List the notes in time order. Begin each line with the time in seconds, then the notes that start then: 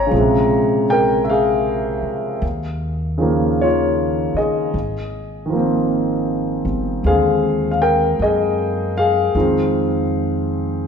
Already playing: C3 G3 G#3 C5 C#5 D#5 G#5 A#5
0.07 C#3
0.11 A#1 F3 G#3
0.18 C3
0.90 A#4 G5
1.24 E5
1.30 G#4 F5
2.02 muted upright bass stroke
2.42 D#2
3.18 C#3 D#3 F3
3.22 A#3
3.61 F4 C#5
4.34 D#5, muted upright bass stroke
4.38 G#4
4.74 G#1
5.46 D#3 F3
5.53 A#3 C4
6.65 G1
7.04 D#2 D3 G#3 C4 G#4 F5
7.71 F5
7.82 A#4 G5
8.19 F#2 D#5
8.23 G#4
8.97 G#4 F5
9.35 F2 D#3 F3 G#3 C4